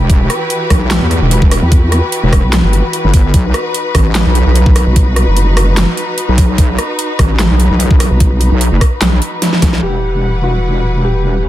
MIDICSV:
0, 0, Header, 1, 6, 480
1, 0, Start_track
1, 0, Key_signature, 1, "minor"
1, 0, Tempo, 405405
1, 114, Time_signature, 4, 2, 24, 8
1, 13602, End_track
2, 0, Start_track
2, 0, Title_t, "Felt piano"
2, 0, Program_c, 0, 0
2, 11633, Note_on_c, 0, 67, 94
2, 12263, Note_off_c, 0, 67, 0
2, 12353, Note_on_c, 0, 66, 87
2, 12983, Note_off_c, 0, 66, 0
2, 13073, Note_on_c, 0, 67, 90
2, 13602, Note_off_c, 0, 67, 0
2, 13602, End_track
3, 0, Start_track
3, 0, Title_t, "String section"
3, 0, Program_c, 1, 48
3, 0, Note_on_c, 1, 52, 77
3, 0, Note_on_c, 1, 64, 73
3, 0, Note_on_c, 1, 66, 77
3, 0, Note_on_c, 1, 67, 72
3, 0, Note_on_c, 1, 71, 88
3, 3906, Note_off_c, 1, 52, 0
3, 3907, Note_off_c, 1, 64, 0
3, 3907, Note_off_c, 1, 67, 0
3, 3953, Note_on_c, 1, 63, 84
3, 11586, Note_off_c, 1, 63, 0
3, 11587, Note_off_c, 1, 66, 0
3, 11587, Note_off_c, 1, 71, 0
3, 11633, Note_on_c, 1, 52, 72
3, 11633, Note_on_c, 1, 55, 64
3, 11633, Note_on_c, 1, 64, 66
3, 11633, Note_on_c, 1, 71, 81
3, 11633, Note_on_c, 1, 78, 64
3, 13534, Note_off_c, 1, 52, 0
3, 13534, Note_off_c, 1, 55, 0
3, 13534, Note_off_c, 1, 64, 0
3, 13534, Note_off_c, 1, 71, 0
3, 13534, Note_off_c, 1, 78, 0
3, 13553, Note_on_c, 1, 57, 72
3, 13553, Note_on_c, 1, 59, 65
3, 13553, Note_on_c, 1, 61, 80
3, 13602, Note_off_c, 1, 57, 0
3, 13602, Note_off_c, 1, 59, 0
3, 13602, Note_off_c, 1, 61, 0
3, 13602, End_track
4, 0, Start_track
4, 0, Title_t, "Wobble bass"
4, 0, Program_c, 2, 39
4, 114, Note_on_c, 2, 28, 99
4, 336, Note_off_c, 2, 28, 0
4, 834, Note_on_c, 2, 35, 102
4, 1180, Note_off_c, 2, 35, 0
4, 1200, Note_on_c, 2, 40, 102
4, 1420, Note_off_c, 2, 40, 0
4, 1440, Note_on_c, 2, 28, 100
4, 1900, Note_off_c, 2, 28, 0
4, 2641, Note_on_c, 2, 28, 98
4, 2860, Note_off_c, 2, 28, 0
4, 3601, Note_on_c, 2, 31, 98
4, 3935, Note_off_c, 2, 31, 0
4, 3953, Note_on_c, 2, 35, 98
4, 4175, Note_off_c, 2, 35, 0
4, 4673, Note_on_c, 2, 33, 102
4, 5020, Note_off_c, 2, 33, 0
4, 5041, Note_on_c, 2, 35, 99
4, 5260, Note_off_c, 2, 35, 0
4, 5281, Note_on_c, 2, 35, 98
4, 5740, Note_off_c, 2, 35, 0
4, 7441, Note_on_c, 2, 35, 102
4, 7775, Note_off_c, 2, 35, 0
4, 7793, Note_on_c, 2, 35, 100
4, 8015, Note_off_c, 2, 35, 0
4, 8514, Note_on_c, 2, 33, 101
4, 8860, Note_off_c, 2, 33, 0
4, 8881, Note_on_c, 2, 35, 102
4, 9100, Note_off_c, 2, 35, 0
4, 9121, Note_on_c, 2, 35, 100
4, 9580, Note_off_c, 2, 35, 0
4, 10081, Note_on_c, 2, 35, 96
4, 10300, Note_off_c, 2, 35, 0
4, 10321, Note_on_c, 2, 30, 98
4, 10416, Note_off_c, 2, 30, 0
4, 10673, Note_on_c, 2, 35, 100
4, 10895, Note_off_c, 2, 35, 0
4, 11394, Note_on_c, 2, 35, 97
4, 11616, Note_off_c, 2, 35, 0
4, 11633, Note_on_c, 2, 28, 84
4, 13531, Note_off_c, 2, 28, 0
4, 13552, Note_on_c, 2, 33, 83
4, 13602, Note_off_c, 2, 33, 0
4, 13602, End_track
5, 0, Start_track
5, 0, Title_t, "Wobble bass"
5, 0, Program_c, 3, 39
5, 1921, Note_on_c, 3, 40, 104
5, 2380, Note_off_c, 3, 40, 0
5, 2881, Note_on_c, 3, 35, 101
5, 3100, Note_off_c, 3, 35, 0
5, 3121, Note_on_c, 3, 31, 95
5, 3340, Note_off_c, 3, 31, 0
5, 5761, Note_on_c, 3, 35, 99
5, 6220, Note_off_c, 3, 35, 0
5, 6241, Note_on_c, 3, 30, 99
5, 6940, Note_off_c, 3, 30, 0
5, 9601, Note_on_c, 3, 35, 100
5, 10061, Note_off_c, 3, 35, 0
5, 13602, End_track
6, 0, Start_track
6, 0, Title_t, "Drums"
6, 114, Note_on_c, 9, 36, 124
6, 114, Note_on_c, 9, 42, 77
6, 232, Note_off_c, 9, 36, 0
6, 232, Note_off_c, 9, 42, 0
6, 354, Note_on_c, 9, 37, 54
6, 354, Note_on_c, 9, 42, 55
6, 472, Note_off_c, 9, 37, 0
6, 472, Note_off_c, 9, 42, 0
6, 594, Note_on_c, 9, 42, 79
6, 712, Note_off_c, 9, 42, 0
6, 834, Note_on_c, 9, 36, 67
6, 834, Note_on_c, 9, 37, 62
6, 834, Note_on_c, 9, 46, 63
6, 952, Note_off_c, 9, 36, 0
6, 952, Note_off_c, 9, 37, 0
6, 952, Note_off_c, 9, 46, 0
6, 1074, Note_on_c, 9, 38, 127
6, 1074, Note_on_c, 9, 39, 95
6, 1074, Note_on_c, 9, 42, 80
6, 1192, Note_off_c, 9, 38, 0
6, 1192, Note_off_c, 9, 39, 0
6, 1192, Note_off_c, 9, 42, 0
6, 1314, Note_on_c, 9, 42, 52
6, 1432, Note_off_c, 9, 42, 0
6, 1554, Note_on_c, 9, 42, 77
6, 1672, Note_off_c, 9, 42, 0
6, 1681, Note_on_c, 9, 36, 112
6, 1794, Note_on_c, 9, 37, 63
6, 1794, Note_on_c, 9, 46, 89
6, 1800, Note_off_c, 9, 36, 0
6, 1912, Note_off_c, 9, 37, 0
6, 1912, Note_off_c, 9, 46, 0
6, 2034, Note_on_c, 9, 36, 123
6, 2034, Note_on_c, 9, 42, 79
6, 2152, Note_off_c, 9, 36, 0
6, 2152, Note_off_c, 9, 42, 0
6, 2274, Note_on_c, 9, 37, 57
6, 2274, Note_on_c, 9, 42, 53
6, 2392, Note_off_c, 9, 37, 0
6, 2392, Note_off_c, 9, 42, 0
6, 2514, Note_on_c, 9, 42, 75
6, 2632, Note_off_c, 9, 42, 0
6, 2754, Note_on_c, 9, 36, 63
6, 2754, Note_on_c, 9, 37, 65
6, 2754, Note_on_c, 9, 46, 64
6, 2872, Note_off_c, 9, 36, 0
6, 2872, Note_off_c, 9, 37, 0
6, 2872, Note_off_c, 9, 46, 0
6, 2994, Note_on_c, 9, 38, 127
6, 2994, Note_on_c, 9, 39, 89
6, 2994, Note_on_c, 9, 42, 78
6, 3112, Note_off_c, 9, 38, 0
6, 3112, Note_off_c, 9, 39, 0
6, 3112, Note_off_c, 9, 42, 0
6, 3234, Note_on_c, 9, 42, 50
6, 3352, Note_off_c, 9, 42, 0
6, 3474, Note_on_c, 9, 42, 77
6, 3592, Note_off_c, 9, 42, 0
6, 3713, Note_on_c, 9, 46, 94
6, 3714, Note_on_c, 9, 36, 113
6, 3832, Note_off_c, 9, 36, 0
6, 3832, Note_off_c, 9, 46, 0
6, 3953, Note_on_c, 9, 36, 121
6, 3953, Note_on_c, 9, 42, 75
6, 4072, Note_off_c, 9, 36, 0
6, 4072, Note_off_c, 9, 42, 0
6, 4193, Note_on_c, 9, 37, 60
6, 4193, Note_on_c, 9, 42, 51
6, 4312, Note_off_c, 9, 37, 0
6, 4312, Note_off_c, 9, 42, 0
6, 4434, Note_on_c, 9, 42, 76
6, 4552, Note_off_c, 9, 42, 0
6, 4673, Note_on_c, 9, 36, 65
6, 4673, Note_on_c, 9, 37, 68
6, 4673, Note_on_c, 9, 46, 66
6, 4792, Note_off_c, 9, 36, 0
6, 4792, Note_off_c, 9, 37, 0
6, 4792, Note_off_c, 9, 46, 0
6, 4913, Note_on_c, 9, 38, 123
6, 4913, Note_on_c, 9, 39, 87
6, 4913, Note_on_c, 9, 42, 78
6, 5031, Note_off_c, 9, 38, 0
6, 5031, Note_off_c, 9, 39, 0
6, 5031, Note_off_c, 9, 42, 0
6, 5153, Note_on_c, 9, 42, 53
6, 5272, Note_off_c, 9, 42, 0
6, 5393, Note_on_c, 9, 42, 81
6, 5512, Note_off_c, 9, 42, 0
6, 5521, Note_on_c, 9, 36, 112
6, 5633, Note_on_c, 9, 37, 67
6, 5633, Note_on_c, 9, 46, 95
6, 5639, Note_off_c, 9, 36, 0
6, 5751, Note_off_c, 9, 37, 0
6, 5751, Note_off_c, 9, 46, 0
6, 5873, Note_on_c, 9, 36, 120
6, 5873, Note_on_c, 9, 42, 77
6, 5992, Note_off_c, 9, 36, 0
6, 5992, Note_off_c, 9, 42, 0
6, 6113, Note_on_c, 9, 37, 58
6, 6113, Note_on_c, 9, 42, 54
6, 6232, Note_off_c, 9, 37, 0
6, 6232, Note_off_c, 9, 42, 0
6, 6353, Note_on_c, 9, 42, 79
6, 6472, Note_off_c, 9, 42, 0
6, 6593, Note_on_c, 9, 37, 69
6, 6593, Note_on_c, 9, 46, 66
6, 6712, Note_off_c, 9, 37, 0
6, 6712, Note_off_c, 9, 46, 0
6, 6833, Note_on_c, 9, 38, 120
6, 6833, Note_on_c, 9, 39, 92
6, 6833, Note_on_c, 9, 42, 82
6, 6952, Note_off_c, 9, 38, 0
6, 6952, Note_off_c, 9, 39, 0
6, 6952, Note_off_c, 9, 42, 0
6, 7074, Note_on_c, 9, 42, 52
6, 7192, Note_off_c, 9, 42, 0
6, 7314, Note_on_c, 9, 42, 81
6, 7432, Note_off_c, 9, 42, 0
6, 7553, Note_on_c, 9, 46, 99
6, 7554, Note_on_c, 9, 36, 102
6, 7672, Note_off_c, 9, 36, 0
6, 7672, Note_off_c, 9, 46, 0
6, 7794, Note_on_c, 9, 36, 116
6, 7794, Note_on_c, 9, 42, 80
6, 7912, Note_off_c, 9, 36, 0
6, 7912, Note_off_c, 9, 42, 0
6, 8034, Note_on_c, 9, 37, 57
6, 8034, Note_on_c, 9, 42, 57
6, 8152, Note_off_c, 9, 37, 0
6, 8152, Note_off_c, 9, 42, 0
6, 8274, Note_on_c, 9, 42, 84
6, 8392, Note_off_c, 9, 42, 0
6, 8514, Note_on_c, 9, 36, 59
6, 8514, Note_on_c, 9, 37, 64
6, 8514, Note_on_c, 9, 46, 69
6, 8632, Note_off_c, 9, 36, 0
6, 8632, Note_off_c, 9, 37, 0
6, 8632, Note_off_c, 9, 46, 0
6, 8754, Note_on_c, 9, 38, 114
6, 8754, Note_on_c, 9, 39, 90
6, 8754, Note_on_c, 9, 42, 80
6, 8872, Note_off_c, 9, 38, 0
6, 8872, Note_off_c, 9, 39, 0
6, 8872, Note_off_c, 9, 42, 0
6, 8994, Note_on_c, 9, 42, 57
6, 9112, Note_off_c, 9, 42, 0
6, 9234, Note_on_c, 9, 42, 85
6, 9352, Note_off_c, 9, 42, 0
6, 9361, Note_on_c, 9, 36, 105
6, 9474, Note_on_c, 9, 37, 65
6, 9474, Note_on_c, 9, 46, 99
6, 9479, Note_off_c, 9, 36, 0
6, 9592, Note_off_c, 9, 37, 0
6, 9592, Note_off_c, 9, 46, 0
6, 9713, Note_on_c, 9, 42, 81
6, 9714, Note_on_c, 9, 36, 114
6, 9832, Note_off_c, 9, 36, 0
6, 9832, Note_off_c, 9, 42, 0
6, 9954, Note_on_c, 9, 42, 58
6, 10072, Note_off_c, 9, 42, 0
6, 10194, Note_on_c, 9, 42, 84
6, 10312, Note_off_c, 9, 42, 0
6, 10434, Note_on_c, 9, 36, 59
6, 10434, Note_on_c, 9, 37, 65
6, 10434, Note_on_c, 9, 46, 64
6, 10552, Note_off_c, 9, 36, 0
6, 10552, Note_off_c, 9, 37, 0
6, 10552, Note_off_c, 9, 46, 0
6, 10674, Note_on_c, 9, 38, 117
6, 10674, Note_on_c, 9, 39, 91
6, 10674, Note_on_c, 9, 42, 86
6, 10792, Note_off_c, 9, 38, 0
6, 10792, Note_off_c, 9, 39, 0
6, 10792, Note_off_c, 9, 42, 0
6, 10914, Note_on_c, 9, 42, 56
6, 11032, Note_off_c, 9, 42, 0
6, 11153, Note_on_c, 9, 38, 63
6, 11153, Note_on_c, 9, 42, 89
6, 11272, Note_off_c, 9, 38, 0
6, 11272, Note_off_c, 9, 42, 0
6, 11281, Note_on_c, 9, 38, 68
6, 11393, Note_off_c, 9, 38, 0
6, 11393, Note_on_c, 9, 38, 90
6, 11393, Note_on_c, 9, 46, 98
6, 11394, Note_on_c, 9, 36, 100
6, 11512, Note_off_c, 9, 36, 0
6, 11512, Note_off_c, 9, 38, 0
6, 11512, Note_off_c, 9, 46, 0
6, 11521, Note_on_c, 9, 38, 84
6, 11639, Note_off_c, 9, 38, 0
6, 13602, End_track
0, 0, End_of_file